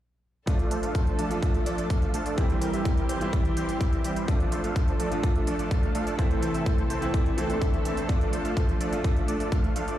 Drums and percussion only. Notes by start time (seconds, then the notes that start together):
0.47 kick, closed hi-hat
0.59 closed hi-hat
0.71 closed hi-hat
0.83 closed hi-hat
0.95 kick, closed hi-hat
1.07 closed hi-hat
1.19 closed hi-hat
1.31 closed hi-hat
1.43 kick, closed hi-hat
1.54 closed hi-hat
1.66 closed hi-hat
1.78 closed hi-hat
1.90 kick, closed hi-hat
2.02 closed hi-hat
2.14 closed hi-hat
2.26 closed hi-hat
2.38 kick, closed hi-hat
2.50 closed hi-hat
2.62 closed hi-hat
2.74 closed hi-hat
2.85 kick, closed hi-hat
2.97 closed hi-hat
3.09 closed hi-hat
3.21 closed hi-hat
3.33 kick, closed hi-hat
3.45 closed hi-hat
3.57 closed hi-hat
3.69 closed hi-hat
3.81 kick, closed hi-hat
3.93 closed hi-hat
4.04 closed hi-hat
4.16 closed hi-hat
4.28 kick, closed hi-hat
4.40 closed hi-hat
4.52 closed hi-hat
4.64 closed hi-hat
4.76 kick, closed hi-hat
4.88 closed hi-hat
5.00 closed hi-hat
5.12 closed hi-hat
5.23 kick, closed hi-hat
5.35 closed hi-hat
5.47 closed hi-hat
5.59 closed hi-hat
5.71 kick, closed hi-hat
5.83 closed hi-hat
5.95 closed hi-hat
6.07 closed hi-hat
6.19 kick, closed hi-hat
6.31 closed hi-hat
6.43 closed hi-hat
6.54 closed hi-hat
6.66 kick, closed hi-hat
6.78 closed hi-hat
6.90 closed hi-hat
7.02 closed hi-hat
7.14 kick, closed hi-hat
7.26 closed hi-hat
7.38 closed hi-hat
7.50 closed hi-hat
7.62 kick, closed hi-hat
7.74 closed hi-hat
7.85 closed hi-hat
7.97 closed hi-hat
8.09 kick, closed hi-hat
8.21 closed hi-hat
8.33 closed hi-hat
8.45 closed hi-hat
8.57 kick, closed hi-hat
8.69 closed hi-hat
8.81 closed hi-hat
8.93 closed hi-hat
9.04 kick, closed hi-hat
9.16 closed hi-hat
9.28 closed hi-hat
9.40 closed hi-hat
9.52 kick, closed hi-hat
9.64 closed hi-hat
9.76 closed hi-hat
9.88 closed hi-hat